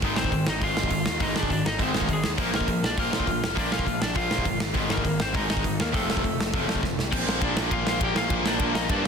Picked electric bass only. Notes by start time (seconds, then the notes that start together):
0.02 G#1
0.18 G#1
0.32 G#1
0.48 G#1
0.62 G#1
0.77 G#1
0.91 G#1
1.07 D#2
1.21 G#1
1.37 G#1
1.50 G#1
1.66 G#1
1.79 G#1
1.94 G#1
2.09 G#1
2.25 D#2
2.39 A#1
2.54 A#1
2.68 A#1
2.83 A#1
2.98 A#1
3.12 A#1
3.28 A#1
3.43 F1
3.57 A#1
3.73 A#1
3.87 A#1
4.02 A#1
4.16 A#1
4.30 A#1
4.45 G1
4.60 G#1
4.75 G#1
4.90 G#1
5.05 G#1
5.20 G#1
5.35 G#1
5.50 G#1
5.65 G#1
5.80 D#2
5.94 F1
6.10 F1
6.24 F1
6.38 F1
6.53 F1
6.68 F1
6.83 F1
6.96 C2
7.13 A#1
7.26 A#1
7.42 A#1
7.56 A#1
7.71 A#1
7.85 A#1
8.01 A#1
8.15 A#1
8.31 A#1
8.44 A#1
8.60 A#1
8.74 A#1
8.89 G2
9.04 A#1